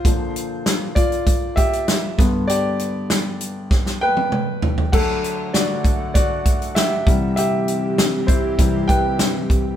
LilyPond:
<<
  \new Staff \with { instrumentName = "Grand piano" } { \time 4/4 \key d \mixolydian \tempo 4 = 98 <f' c''>4. <f' d''>4 <g' e''>4 r8 | <g' d''>2~ <g' d''>8 <b' g''>4. | <a' fis''>4 <fis' d''>4 <fis' d''>4 <g' e''>4 | <g' e''>4. <e' c''>4 <b' g''>4 r8 | }
  \new Staff \with { instrumentName = "Grand piano" } { \clef bass \time 4/4 \key d \mixolydian <bes, d f>2.~ <bes, d f>8 <g, d b>8 | r1 | <d fis a>8 r2. <c e g>8~ | <c e g>2 <c e g>8 r4. | }
  \new Staff \with { instrumentName = "Analog synth pad" } { \time 4/4 \key d \mixolydian r1 | r1 | <d a fis''>2.~ <d a fis''>8 <e c' g'>8~ | <e c' g'>1 | }
  \new DrumStaff \with { instrumentName = "Drums" } \drummode { \time 4/4 <hh bd>8 hh8 <hh sn>8 <hh bd>16 hh16 <hh bd>8 <hh bd>16 hh16 <hh sn>8 <hh bd sn>8 | hh8 hh8 <hh sn>8 hh8 <bd sn>16 sn8 tommh16 toml8 tomfh16 tomfh16 | <cymc bd>8 hh8 <hh sn>8 <hh bd>8 <hh bd>8 <hh bd>16 hh16 <hh sn>8 <hh bd>8 | hh8 hh8 <hh sn>8 <hh bd>8 <hh bd>8 <hh bd>8 <hh sn>8 <hh bd>8 | }
>>